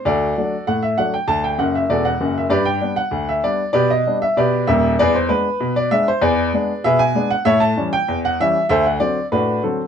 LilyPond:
<<
  \new Staff \with { instrumentName = "Upright piano" } { \time 2/4 \key g \major \tempo 4 = 97 <fis' a' d''>4 fis''16 e''16 fis''16 g''16 | a''16 g''16 fis''16 e''16 <fis' a' d''>16 fis''8 e''16 | <g' b' d''>16 g''8 fis''8 e''16 d''8 | <g' b' d''>16 ees''8 e''16 <g' b' d''>8 e''8 |
<gis' b' d''>16 c''16 b'8. d''16 e''16 c''16 | <gis' b' d''>4 <gis' b' e''>16 gis''8 fis''16 | <a' cis'' e''>16 a''8 g''8 fis''16 e''8 | <a' c'' e''>16 fis''16 d''8 <d' fis' b'>8 a'8 | }
  \new Staff \with { instrumentName = "Upright piano" } { \clef bass \time 2/4 \key g \major d,8 <fis a d'>8 a,8 <fis a d'>8 | d,8 <fis,, fis,>8 <e,, e,>8 <fis,, fis,>8 | g,8 <g b d'>8 d,8 <g b d'>8 | b,8 <g b d'>8 b,8 <ees,, ees,>8 |
e,8 <gis b d'>8 b,8 <gis b d'>8 | e,8 <gis b d'>8 b,8 <gis b d'>8 | a,8 <e g cis'>8 e,8 <e g cis'>8 | d,8 <d fis c'>8 a,8 <d fis c'>8 | }
>>